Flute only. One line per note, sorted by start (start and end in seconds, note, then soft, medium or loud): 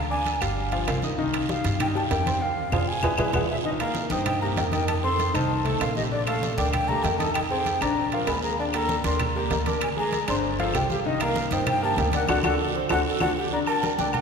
0.11 0.43 G#5 medium
0.41 1.03 F5 medium
1.51 1.79 F5 medium
1.81 1.87 G5 loud
1.96 2.02 A5 medium
2.11 2.43 G5 loud
2.42 2.90 F5 medium
2.88 3.34 G#5 loud
3.34 3.40 F#5 medium
3.50 3.56 E5 medium
3.64 3.70 D#5 medium
3.80 4.09 F5 medium
4.11 4.25 G5 medium
4.26 4.41 G5 loud
4.41 4.47 A#5 medium
4.57 4.63 G5 medium
4.73 4.87 G5 medium
4.88 4.94 A5 loud
5.04 5.37 C6 loud
5.35 5.81 A5 medium
5.81 5.95 F5 loud
5.97 6.03 D#5 loud
6.11 6.26 D5 loud
6.27 6.56 F5 loud
6.57 6.72 G5 medium
6.72 6.90 G5 loud
6.88 7.05 A#5 loud
7.03 7.20 G5 medium
7.18 7.33 A5 loud
7.34 7.40 G5 medium
7.49 7.83 G5 loud
7.81 8.07 A#5 medium
8.28 8.42 B5 medium
8.43 8.57 A#5 loud
8.60 8.66 A5 loud
8.74 9.03 A#5 medium
9.05 9.19 C6 medium
9.53 9.70 A#5 medium
9.68 9.82 A5 medium
9.83 9.89 G#5 medium
9.99 10.27 A#5 loud
10.30 10.36 C6 medium
10.75 10.89 G5 medium
10.91 10.97 F5 medium
11.06 11.23 D#5 medium
11.22 11.54 F5 loud
11.53 11.67 G5 medium
11.68 11.82 G5 loud
11.84 12.00 A5 loud
11.99 12.14 G5 medium
12.15 12.28 F#5 loud
12.30 12.39 F#5 loud
12.45 12.54 F#5 loud
12.92 13.01 F#5 loud
13.22 13.31 F#5 loud
13.53 13.59 A#5 medium
13.68 13.96 A5 loud
13.98 14.14 G5 medium
14.13 14.21 F#5 medium